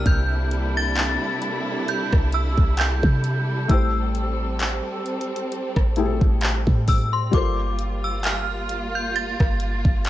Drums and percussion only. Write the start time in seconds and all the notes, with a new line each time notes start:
0.06 kick, closed hi-hat
0.51 closed hi-hat
0.96 clap, closed hi-hat
1.42 closed hi-hat
1.88 closed hi-hat
2.13 kick, cross-stick
2.33 closed hi-hat
2.58 kick
2.77 clap, closed hi-hat
3.03 kick
3.24 closed hi-hat
3.69 kick, closed hi-hat
4.15 closed hi-hat
4.60 clap, closed hi-hat
5.06 closed hi-hat
5.21 closed hi-hat
5.36 closed hi-hat
5.52 closed hi-hat
5.76 kick, cross-stick
5.96 closed hi-hat
6.21 kick
6.41 clap, closed hi-hat
6.67 kick
6.88 kick, open hi-hat
7.33 kick, closed hi-hat
7.79 closed hi-hat
8.24 clap, closed hi-hat
8.69 closed hi-hat
9.16 closed hi-hat
9.40 kick, cross-stick
9.60 closed hi-hat
9.85 kick
10.05 closed hi-hat